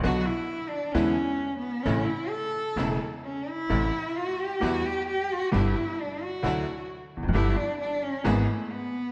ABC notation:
X:1
M:4/4
L:1/16
Q:1/4=132
K:Amix
V:1 name="Cello"
F2 E4 D2 C6 B,2 | C2 E2 A6 z2 C2 E2- | E4 F2 G2 F2 G2 G2 F2 | E4 D2 F6 z4 |
E2 D2 D2 C2 B,2 A,2 B,4 |]
V:2 name="String section"
[B,DF]2 z6 [^G,DE]2 z6 | [A,CE]2 z6 [A,CE]2 z6 | [A,=CE]2 z6 [G,B,E]2 z6 | [G,B,D]2 z6 [F,DE]2 z6 |
[G,B,D]2 z6 [^G,B,E]2 z6 |]
V:3 name="Grand piano" clef=bass
[B,,,B,,D,F,B,F]2 z6 [E,,D,E,^G,B,E]2 z6 | [A,,,A,,C,E,A,E]2 z6 [E,,,E,,C,E,A,E]2 z6 | [A,,,A,,=C,E,A,E]2 z6 [E,,E,G,B,G]2 z6 | [G,,,G,,D,G,B,G]2 z6 [D,,D,F,A,E]2 z4 z/2 E,,/2 =F,,/2 ^F,,/2 |
[G,,,G,,D,G,B,G]2 z6 [^G,,,^G,,E,^G,B,^G]2 z6 |]
V:4 name="Upright bass" clef=bass
B,,,3/2 z6 z/2 E,,3/2 z6 z/2 | A,,,3/2 z6 z/2 E,,,3/2 z6 z/2 | A,,,3/2 z6 z/2 E,,3/2 z6 z/2 | G,,,3/2 z6 z/2 D,,3/2 z4 z E,,,/2 =F,,,/2 ^F,,,/2 |
G,,,3/2 z6 z/2 ^G,,,3/2 z6 z/2 |]